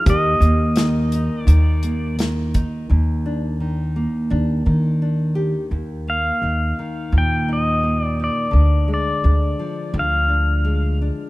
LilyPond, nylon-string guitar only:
\new Staff \with { instrumentName = "Nylon-string guitar" } { \time 4/4 \key ees \major \tempo 4 = 85 << { g'8 bes4 ees'4 bes4 ees'8 | r8 d'4 bes8 d'4 d'8 g'8 | r8 bes8 ees'4. ees'8 bes8 ees'8 | r8 aes8 d'4. d'8 aes8 d'8 | } \\ { ees,4 ees4 ees4 ees4 | ees,4 ees4. ees4. | ees,4. ees8 bes,2 | d4. f8 d2 | } >> }